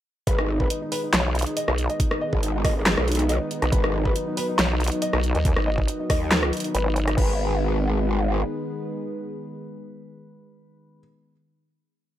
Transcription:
0.27 wobble bass G#1, analog synth pad D#3 G#3 B3, grand piano B4, kick, closed hi-hat
0.38 grand piano D#4, cross-stick
0.49 grand piano D#4
0.60 grand piano B4, kick
0.70 grand piano D#4, closed hi-hat
0.82 grand piano D#4
0.92 grand piano B4, open hi-hat
1.03 grand piano D#4
1.13 wobble bass B1, grand piano C#5, snare, clap, closed hi-hat
1.25 grand piano D#4
1.35 grand piano D#4, closed hi-hat
1.39 closed hi-hat
1.42 closed hi-hat
1.46 grand piano D#4, closed hi-hat
1.57 grand piano D#5, closed hi-hat
1.68 wobble bass B1, grand piano D#4, cross-stick
1.78 grand piano D#4, closed hi-hat
1.90 grand piano D#5, closed hi-hat
2.00 grand piano D#4, kick, closed hi-hat
2.11 grand piano D#4, cross-stick
2.21 grand piano D#5
2.33 wobble bass G#1, grand piano D#4, kick
2.43 grand piano D#4, closed hi-hat
2.54 grand piano D#4
2.64 grand piano D#5, kick, cross-stick, open hi-hat
2.76 grand piano D#4
2.86 grand piano D#4, snare, clap, closed hi-hat
2.98 wobble bass B1, cross-stick
3.08 grand piano D#4, closed hi-hat
3.12 closed hi-hat
3.15 closed hi-hat
3.19 grand piano D#4, closed hi-hat
3.29 grand piano D#5, closed hi-hat
3.41 grand piano D#4
3.51 grand piano D#4, closed hi-hat
3.62 wobble bass B1, grand piano D#4, cross-stick, closed hi-hat
3.72 wobble bass G#1, analog synth pad F#3, grand piano B4, kick, closed hi-hat
3.84 grand piano D#4, cross-stick
3.94 grand piano D#4
4.05 grand piano B4, kick
4.16 grand piano D#4, closed hi-hat
4.27 grand piano D#4
4.37 grand piano B4, open hi-hat
4.49 grand piano D#4
4.59 wobble bass B1, grand piano C#5, snare, clap, closed hi-hat
4.70 grand piano D#4
4.80 grand piano D#4, closed hi-hat
4.84 closed hi-hat
4.88 closed hi-hat
4.92 grand piano D#4, closed hi-hat
5.02 grand piano D#5, closed hi-hat
5.13 wobble bass B1, grand piano D#4, cross-stick
5.23 grand piano D#4, closed hi-hat
5.35 wobble bass D#2, grand piano D#5, closed hi-hat
5.45 grand piano D#4, kick, closed hi-hat
5.56 wobble bass G#1, grand piano D#4, cross-stick
5.67 grand piano D#5
5.78 grand piano D#4, kick
5.88 grand piano D#4, closed hi-hat
6.00 grand piano D#4
6.10 wobble bass D#2, grand piano D#5, kick, cross-stick, open hi-hat
6.21 grand piano D#4
6.31 grand piano D#4, snare, clap, closed hi-hat
6.43 cross-stick
6.53 grand piano D#4, closed hi-hat
6.57 closed hi-hat
6.60 closed hi-hat
6.64 grand piano D#4, closed hi-hat
6.75 wobble bass G#1, grand piano B4, closed hi-hat
6.86 grand piano D#4
6.96 closed hi-hat
7.08 grand piano D#4, cross-stick, closed hi-hat
7.18 wobble bass G#1, analog synth pad D#3 G#3 B3, grand piano B4, kick, crash

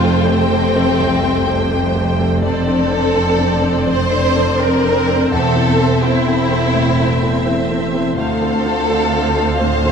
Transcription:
Already playing: double bass section F1, grand piano F2 C4 G4 A4, cello section F2, viola section A3 C5, violin section F4 G5
0.03 grand piano C4 G4 A4
0.28 violin section C4, grand piano C4 G4 A4
0.52 grand piano C4 G4 A4
0.75 grand piano C4 G4 A4
0.99 grand piano C2
1.23 grand piano C4 G4 A4
1.47 grand piano C4 G4 A4
1.70 grand piano C4 G4 A4
1.95 grand piano C4 G4 A4
2.19 grand piano C4 G4 A4
2.42 grand piano F2, viola section C4 C5, violin section A4 D5
2.66 grand piano C4 D4 A4
2.91 grand piano C4 D4 A4
3.15 grand piano C4 D4 A4
3.38 grand piano C4 D4 A4
3.63 grand piano C4 D4 A4
3.87 grand piano F2, violin section C5
4.11 grand piano C4 D4 A4
4.35 grand piano C4 D4 A4
4.59 grand piano C4 D4 A4, violin section A#4
4.83 grand piano C4 D4 A4
5.08 grand piano C4 D4 A4
5.32 double bass section E1, grand piano E2, cello section E2, violin section A4 E5
5.56 grand piano C4 E4 A4
5.80 grand piano C4 E4 A4
6.04 grand piano C4 E4 A4, violin section E4
6.28 grand piano C4 E4 A4
6.51 grand piano C4 E4 A4
6.75 grand piano A2
6.98 grand piano C4 E4 A4
7.22 grand piano C4 E4 A4
7.46 grand piano C4 E4 A4
7.70 grand piano C4 E4 A4
7.94 grand piano C4 E4 A4
8.18 grand piano D2, cello section D2, double bass section D2, viola section A3 C5, violin section A4 F5
8.41 grand piano C4 F4 A4
8.66 grand piano C4 F4 A4
8.89 grand piano C4 F4 A4
9.13 grand piano C4 F4 A4
9.37 grand piano C4 F4 A4
9.61 grand piano A2, violin section C5
9.85 grand piano C4 F4 A4

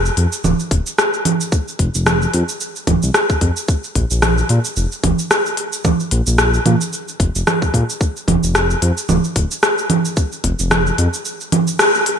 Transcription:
Already playing: analog synth bass F1
0.05 cabasa
0.17 analog synth bass F2, open hi-hat
0.33 cabasa
0.44 analog synth bass D1, low conga, cabasa
0.59 cabasa
0.71 analog synth bass D1, kick, open hi-hat
0.87 cabasa
0.98 cross-stick, cabasa
1.14 cabasa
1.25 open hi-hat, low conga
1.41 cabasa
1.52 kick, cabasa
1.68 cabasa
1.79 analog synth bass F1, kick, open hi-hat
1.95 analog synth bass F1, cabasa
2.06 cross-stick, low conga, cabasa
2.22 cabasa
2.34 analog synth bass F2, open hi-hat
2.49 cabasa
2.61 cabasa
2.76 cabasa
2.87 analog synth bass D1, kick, open hi-hat, low conga
3.03 analog synth bass C2, cabasa
3.14 cross-stick, cabasa
3.30 kick, cabasa
3.41 analog synth bass F2, kick, open hi-hat
3.57 cabasa
3.68 kick, cabasa
3.84 cabasa
3.95 analog synth bass A#1, kick, open hi-hat
4.11 analog synth bass A#1, cabasa
4.22 cross-stick, low conga, cabasa
4.38 cabasa
4.49 analog synth bass A#2, open hi-hat
4.65 cabasa
4.77 analog synth bass F1, cabasa
4.92 cabasa
5.04 analog synth bass F1, kick, open hi-hat, low conga
5.19 cabasa
5.31 cross-stick, cabasa
5.46 cabasa
5.57 open hi-hat
5.73 cabasa
5.85 kick, low conga, cabasa
6.00 cabasa
6.11 analog synth bass A#1, open hi-hat
6.27 analog synth bass A#1, cabasa
6.38 cross-stick, cabasa
6.54 cabasa
6.66 analog synth bass A#2, open hi-hat, low conga
6.81 cabasa
6.93 cabasa
7.08 cabasa
7.20 analog synth bass F1, kick, open hi-hat
7.35 analog synth bass F1, cabasa
7.47 cross-stick, low conga, cabasa
7.62 kick, cabasa
7.74 analog synth bass A#2, kick, open hi-hat
7.90 cabasa
8.01 kick, cabasa
8.16 cabasa
8.28 analog synth bass F1, kick, open hi-hat, low conga
8.43 analog synth bass F1, cabasa
8.55 cross-stick, cabasa
8.70 cabasa
8.82 analog synth bass F2, open hi-hat
8.98 cabasa
9.09 analog synth bass D1, low conga, cabasa
9.24 cabasa
9.36 analog synth bass D1, kick, open hi-hat
9.51 cabasa
9.63 cross-stick, cabasa
9.78 cabasa
9.90 open hi-hat, low conga
10.05 cabasa
10.17 kick, cabasa
10.32 cabasa
10.44 analog synth bass F1, kick, open hi-hat
10.59 analog synth bass F1, cabasa
10.71 cross-stick, low conga, cabasa
10.87 cabasa
10.98 analog synth bass F2, open hi-hat
11.14 cabasa
11.25 cabasa
11.40 cabasa
11.52 open hi-hat, low conga
11.67 cabasa
11.79 cross-stick, cabasa
11.95 cabasa
12.06 open hi-hat

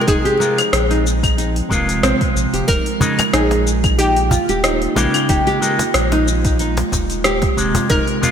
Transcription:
Already playing: clean electric guitar C3 G#3, ambient pad F3 G#3 C4 G5
0.01 oud A#4
0.07 sub bass D#1, nylon-string guitar D#4, oud G#4, kick, open hi-hat, shaker
0.25 nylon-string guitar G4, open hi-hat
0.39 clean electric guitar C3 G#3 F4, nylon-string guitar A#4, shaker
0.58 cross-stick, open hi-hat, claves, shaker
0.73 sub bass A#1, cross-stick, open hi-hat, shaker
0.90 nylon-string guitar D#4, open hi-hat
1.07 shaker
1.23 nylon-string guitar D#4, kick, open hi-hat, claves, shaker
1.38 nylon-string guitar D#4, open hi-hat, shaker
1.56 open hi-hat
1.69 sub bass D#1, clean electric guitar C3 G#3, nylon-string guitar A#3, kick, shaker
1.73 clean electric guitar F4
1.89 open hi-hat, shaker
2.03 sub bass A#1, nylon-string guitar C4, cross-stick, open hi-hat, shaker
2.21 kick, open hi-hat
2.36 sub bass A#1, shaker
2.53 sub bass D#1, nylon-string guitar G4, open hi-hat, shaker
2.68 sub bass D#1, ambient pad D#3 A#3 F4, nylon-string guitar D#4, oud A#4, kick, open hi-hat, shaker
2.86 open hi-hat
3.00 clean electric guitar C#3 G#3 D#4, cajon bass, shaker
3.19 cajon slap, open hi-hat, claves, shaker
3.33 sub bass A#1, nylon-string guitar D#4, oud G#4, cross-stick, open hi-hat, shaker
3.51 cajon slap, open hi-hat
3.67 shaker
3.84 kick, open hi-hat, claves, shaker
3.99 nylon-string guitar D#4, oud G4, open hi-hat, shaker
4.16 open hi-hat
4.31 oud F4, cajon bass, shaker
4.49 sub bass D#1, nylon-string guitar G4, open hi-hat, shaker
4.64 oud D#4, cross-stick, open hi-hat, shaker
4.82 open hi-hat
4.95 sub bass A#1, clean electric guitar C#3 G#3 G4, nylon-string guitar A#3, cajon slap, shaker
5.14 nylon-string guitar F4, open hi-hat, claves, shaker
5.29 sub bass D#1, nylon-string guitar D#4, oud G4, kick, open hi-hat, shaker
5.47 nylon-string guitar G4, open hi-hat
5.61 clean electric guitar C#3 G#3 D#4, nylon-string guitar A#4, shaker
5.79 cajon slap, open hi-hat, shaker
5.94 sub bass A#1, cross-stick, open hi-hat, shaker
6.12 nylon-string guitar D#4, cajon slap, open hi-hat
6.28 shaker
6.45 nylon-string guitar D#4, kick, open hi-hat, shaker
6.59 nylon-string guitar D#4, open hi-hat, shaker
6.77 cajon slap, open hi-hat
6.92 sub bass D#1, kick, cajon bass, shaker
7.10 open hi-hat, shaker
7.24 nylon-string guitar G4, cross-stick, open hi-hat, shaker
7.42 kick, cajon slap, open hi-hat
7.56 sub bass D#1, clean electric guitar C3 G#3, shaker
7.75 nylon-string guitar F4, cajon bass, open hi-hat, shaker
7.90 sub bass D#1, ambient pad F3 C4 G5, nylon-string guitar D#4, oud A#4, kick, open hi-hat, shaker
8.07 open hi-hat
8.22 clean electric guitar C3 G#3 F4, cajon bass, shaker

